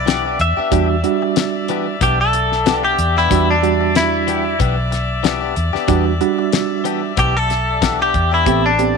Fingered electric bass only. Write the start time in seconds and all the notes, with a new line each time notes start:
Already playing: B1
0.39 E2
0.57 muted fingered electric bass stroke
0.72 E2
2.01 B1
2.98 E2
3.31 E2
4.60 B1
5.57 E2
5.75 muted fingered electric bass stroke
5.89 E2
7.18 B1
8.14 E2
8.47 A1